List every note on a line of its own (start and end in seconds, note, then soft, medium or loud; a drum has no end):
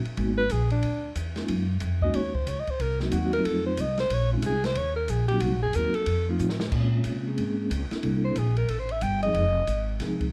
0.05 muted upright bass stroke soft
0.05 ride soft
0.17 0.49 G#1 medium
0.17 0.36 G#3 medium
0.17 0.37 A#3 medium
0.17 0.37 B3 medium
0.17 0.37 D#4 medium
0.17 0.37 F#4 medium
0.17 ride medium
0.38 0.53 B4 loud
0.50 0.82 A#1 medium
0.50 0.71 G#4 medium
0.50 hi-hat pedal medium
0.50 ride medium
0.70 1.13 D4 medium
0.70 ride soft
0.83 1.15 D2 medium
0.83 ride medium
1.15 1.48 E2 medium
1.15 hi-hat pedal medium
1.15 ride medium
1.36 1.48 G#3 medium
1.36 1.48 A#3 medium
1.36 1.48 C#4 medium
1.36 1.49 D#4 medium
1.36 1.49 F4 medium
1.36 snare medium
1.36 ride soft
1.48 1.81 F#2 medium
1.48 ride medium
1.80 2.13 F2 medium
1.80 hi-hat pedal soft
1.80 ride medium
2.02 2.14 G#3 medium
2.02 2.14 A#3 medium
2.02 2.14 C#4 medium
2.02 2.14 D#4 medium
2.02 2.14 F#4 medium
2.02 2.17 D#5 medium
2.02 kick medium
2.14 2.46 D#2 medium
2.14 2.36 C#5 medium
2.14 ride medium
2.34 2.50 C5 medium
2.34 kick medium
2.47 2.66 C#2 medium
2.47 2.61 C#5 medium
2.47 hi-hat pedal medium
2.47 ride medium
2.60 2.72 D#5 medium
2.67 2.83 C5 loud
2.67 muted upright bass stroke soft
2.67 kick soft
2.67 ride soft
2.80 3.12 C2 medium
2.80 3.01 A#4 loud
2.80 ride medium
3.00 3.31 F#3 medium
3.00 3.31 A#3 medium
3.00 3.32 C4 medium
3.00 3.32 D#4 medium
3.00 3.13 D#4 soft
3.00 3.32 F#4 medium
3.00 snare soft
3.11 3.44 D#2 medium
3.11 3.33 F#4 medium
3.11 hi-hat pedal medium
3.11 ride medium
3.33 3.76 F#3 medium
3.33 3.76 A3 medium
3.33 3.77 C4 medium
3.33 3.76 D#4 medium
3.33 3.77 F4 medium
3.33 3.47 A#4 loud
3.33 ride medium
3.44 3.77 F2 medium
3.44 3.66 A4 loud
3.44 ride medium
3.66 3.82 C5 medium
3.77 4.09 C2 medium
3.77 3.99 D#5 medium
3.77 hi-hat pedal medium
3.77 ride medium
3.98 4.15 C5 loud
3.98 snare medium
3.98 ride soft
4.10 4.42 A#1 medium
4.10 4.32 C#5 loud
4.10 ride medium
4.32 4.43 G#3 medium
4.32 4.43 C4 medium
4.32 4.43 C#4 medium
4.32 4.43 D#4 medium
4.32 4.43 F4 medium
4.32 4.47 F4 soft
4.42 4.75 C2 medium
4.42 4.67 G#4 loud
4.42 hi-hat pedal medium
4.42 ride medium
4.64 4.79 C5 loud
4.64 snare medium
4.64 ride medium
4.75 5.08 D#2 medium
4.75 4.95 C#5 loud
4.75 ride medium
4.96 5.12 A#4 medium
5.08 5.41 A#1 medium
5.08 5.28 G#4 medium
5.08 hi-hat pedal medium
5.08 ride medium
5.28 5.41 F#3 medium
5.28 5.41 A#3 medium
5.28 5.41 C4 medium
5.28 5.41 D#4 medium
5.28 5.41 F#4 medium
5.28 5.43 G4 loud
5.28 ride medium
5.40 5.53 C2 medium
5.40 5.62 F#4 medium
5.40 ride medium
5.53 5.63 A#1 medium
5.62 5.74 F#1 medium
5.62 5.77 G#4 loud
5.73 5.94 D#2 medium
5.73 5.94 F#3 medium
5.73 5.94 A#3 medium
5.73 5.94 C4 medium
5.73 5.94 D#4 medium
5.73 5.94 F#4 medium
5.73 5.96 A#4 loud
5.73 hi-hat pedal medium
5.73 ride medium
5.94 6.28 A4 loud
5.94 muted upright bass stroke soft
5.94 ride medium
6.06 6.39 F2 medium
6.06 ride medium
6.29 6.39 F3 medium
6.29 6.39 A3 medium
6.29 6.39 C4 medium
6.29 6.40 D#4 medium
6.29 6.40 F4 loud
6.39 6.71 A2 medium
6.39 hi-hat pedal medium
6.49 snare medium
6.60 snare loud
6.72 7.04 A#2 medium
6.72 7.23 G#3 medium
6.72 7.22 A#3 medium
6.72 7.23 C4 soft
6.72 7.23 C#4 medium
6.72 7.23 F4 medium
6.72 kick medium
6.72 crash medium
7.04 7.37 C3 medium
7.04 hi-hat pedal medium
7.04 ride medium
7.26 7.69 G#3 medium
7.26 7.69 A#3 medium
7.26 7.69 C4 medium
7.26 7.69 C#4 medium
7.26 7.69 G#4 medium
7.38 7.69 G#2 medium
7.38 ride medium
7.70 7.90 C#2 medium
7.70 hi-hat pedal medium
7.70 ride medium
7.91 8.34 A#3 medium
7.91 8.34 C4 medium
7.91 8.35 D4 medium
7.91 8.34 E4 medium
7.91 8.35 A4 medium
7.91 muted upright bass stroke soft
7.91 snare medium
7.91 ride soft
8.03 8.35 C2 medium
8.03 ride medium
8.24 8.40 C5 medium
8.36 8.68 A#1 medium
8.36 8.57 G#4 medium
8.36 hi-hat pedal medium
8.36 ride medium
8.56 8.72 A#4 loud
8.56 ride soft
8.68 9.01 A1 medium
8.68 8.81 A4 medium
8.68 ride medium
8.80 8.93 C5 medium
8.89 9.04 E5 medium
8.89 ride soft
9.01 9.33 G1 loud
9.01 9.22 G5 loud
9.01 hi-hat pedal medium
9.01 ride medium
9.23 9.34 F3 medium
9.23 9.34 G#3 medium
9.23 9.34 C4 medium
9.23 9.34 D#4 medium
9.23 9.34 G#4 medium
9.23 9.96 D#5 loud
9.23 ride soft
9.34 9.66 F1 medium
9.34 ride medium
9.67 9.99 G#1 medium
9.67 hi-hat pedal medium
9.67 ride medium
10.00 10.32 C2 medium
10.00 10.19 F3 medium
10.00 10.19 G#3 medium
10.00 10.19 C4 medium
10.00 10.19 D#4 medium
10.00 10.19 G#4 medium
10.00 snare soft
10.00 ride medium
10.21 kick medium
10.21 ride soft